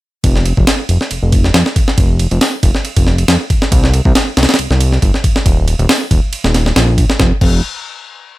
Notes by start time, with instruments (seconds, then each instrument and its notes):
0.24 analog synth bass F1, kick, ride
0.36 snare
0.46 ride
0.57 analog synth bass F1, kick
0.67 snare, ride
0.89 analog synth bass F1, ride
1.01 snare
1.11 analog synth bass F1, ride
1.22 analog synth bass F1
1.32 kick, ride
1.44 snare
1.54 analog synth bass F2, snare, ride
1.66 snare
1.76 kick, ride
1.88 snare
1.98 analog synth bass F1, kick, ride
2.19 ride
2.31 analog synth bass F1, ride
2.41 snare, open hi-hat
2.63 analog synth bass F1, kick, ride
2.75 snare
2.85 ride
2.96 analog synth bass F1, kick, ride
3.07 snare
3.18 ride
3.28 analog synth bass F2, snare, ride
3.50 kick, ride
3.62 snare
3.72 analog synth bass C2, kick, ride
3.84 snare
3.94 ride
4.05 analog synth bass C2, kick
4.15 snare, ride
4.37 analog synth bass C2, snare, ride
4.43 snare, ride
4.49 snare, ride
4.54 snare, ride
4.59 analog synth bass C2, ride
4.70 analog synth bass C2, snare
4.80 ride
4.92 snare
5.02 analog synth bass G1, kick, ride
5.14 snare
5.24 kick, ride
5.36 snare
5.46 analog synth bass D#1, kick, ride
5.68 ride
5.79 analog synth bass D#1, ride
5.89 snare, open hi-hat
6.11 analog synth bass D#1, kick, ride
6.33 ride
6.44 analog synth bass D#1, snare
6.54 snare, ride
6.66 snare
6.76 analog synth bass A#1, snare, ride
6.98 kick, ride
7.10 snare
7.20 analog synth bass F1, kick, snare
7.41 analog synth bass F1, kick, crash